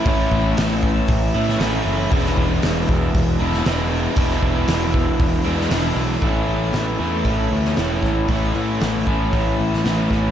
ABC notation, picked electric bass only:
X:1
M:4/4
L:1/8
Q:1/4=117
K:A
V:1 name="Picked electric bass" clef=bass
A,,, A,,, A,,,2 A,,, A,, A,,, F,,, | E,,, E,,, E,,, E,,, E,,, E,,, E,,,2 | E,,, E,,, E,,,2 E,,, E,, E,,, B,,, | A,,, A,,, A,,, E,, A,,, D,, E,,, A,,, |
A,,, A,, A,,, A,,, A,,, A,,, A,,, A,,, |]